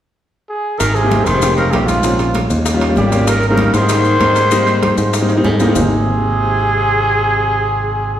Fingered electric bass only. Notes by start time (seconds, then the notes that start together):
0.80 G#1
1.27 F1
1.73 A#1
2.50 D#2
2.97 G#1
3.74 G#2
4.21 G#2
4.98 G#2
5.45 G#2
5.76 G#1